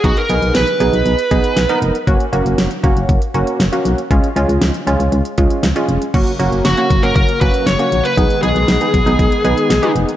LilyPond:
<<
  \new Staff \with { instrumentName = "Lead electric guitar" } { \time 4/4 \key fis \major \tempo 4 = 118 fis'16 ais'8. b'2~ b'8 r8 | r1 | r1 | r4 fis'8. ais'16 ais'8 b'8 cis''8. b'16~ |
b'8 gis'2. r8 | }
  \new Staff \with { instrumentName = "Analog polysynth" } { \time 4/4 \key fis \major <b dis' gis'>16 r16 <b dis' gis'>8. r16 <b dis' gis'>8. r16 <b dis' gis'>8 r16 <b dis' ais'>8 r16 | <ais cis' fis'>16 r16 <ais cis' fis'>8. r16 <ais cis' fis'>8. r16 <ais cis' fis'>8 r16 <ais cis' fis'>8 r16 | <gis cis' eis'>16 r16 <gis cis' eis'>8. r16 <gis cis' eis'>8. r16 <gis cis' eis'>8 r16 <gis cis' eis'>8 r16 | <ais cis' fis'>16 r16 <ais cis' fis'>8 r16 <ais cis' fis'>16 r16 <ais cis' fis'>8 r16 <ais cis' fis'>8 r16 <ais cis' fis'>8 r16 |
<b dis' gis'>16 r16 <b dis' gis'>8 r16 <b dis' gis'>16 r16 <b dis' gis'>8 r16 <b dis' gis'>8 r16 <b dis' gis'>8 r16 | }
  \new Staff \with { instrumentName = "Analog synth pad" } { \clef bass \time 4/4 \key fis \major r1 | r1 | r1 | <cis fis ais>1 |
<dis gis b>1 | }
  \new Staff \with { instrumentName = "FM bass" } { \clef bass \time 4/4 \key fis \major b,,16 r16 b,,16 b,,16 b,,16 r16 b,,16 b,,16 b,,16 r16 b,,16 r16 b,,16 r16 eis,,16 r16 | fis,,16 r16 fis,,16 fis,,16 fis,,16 r16 fis,,16 fis,,16 fis,,16 r16 fis,,16 r16 fis,,16 r16 b,,16 r16 | cis,16 r16 cis,16 cis,16 cis,16 r16 cis,16 cis,16 cis,16 r16 cis,16 r16 cis,16 r16 eis,,16 r16 | fis,,16 r16 fis,,16 fis,,16 fis,,16 r16 fis,,16 fis,,16 fis,,16 r16 fis,,16 r16 fis,,16 r16 ais,,16 r16 |
b,,16 r16 b,,16 b,,16 b,,16 r16 b,,16 b,,16 b,,16 r16 b,,16 r16 b,,16 r16 eis,,16 r16 | }
  \new DrumStaff \with { instrumentName = "Drums" } \drummode { \time 4/4 <hh bd>16 hh16 hh16 hh16 <hh sn>16 hh16 hh16 hh16 hh16 hh16 <hh bd>16 hh16 <hh sn>16 hh16 hh16 hh16 | <hh bd>16 hh16 hh16 hh16 <hh sn>16 hh16 <hh bd>16 hh16 <hh bd>16 hh16 hh16 hh16 <hh sn>16 hh16 hh16 hh16 | <hh bd>16 hh16 hh16 hh16 <hh sn>16 hh16 hh16 hh16 hh16 hh16 <hh bd>16 hh16 <hh sn>16 hh16 hh16 hh16 | <cymc hh bd>16 hh16 hh16 hh16 <hh sn>16 hh16 <hh bd>16 hh16 <hh bd>16 hh16 <hh bd>16 hh16 <hh sn>16 hh16 hh16 hh16 |
<hh bd>16 hh16 hh16 hh16 <hh sn>16 hh16 <hh bd>16 hh16 <hh bd>16 hh16 hh16 hh16 <hh sn>16 hh16 hh16 hh16 | }
>>